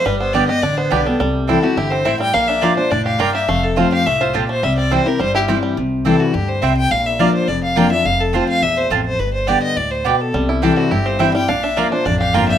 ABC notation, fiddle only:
X:1
M:4/4
L:1/8
Q:1/4=210
K:Cmix
V:1 name="Fiddle"
=B c d _e d c B A | z2 A ^F G c e g | f e d c d f g e | f A c f e c A c |
e d c B c G z2 | z2 A ^F G c e g | f e d c d f g e | f A c f e c A c |
=B c d _e d c B A | z2 A ^F G c e g | f e d c d f g e |]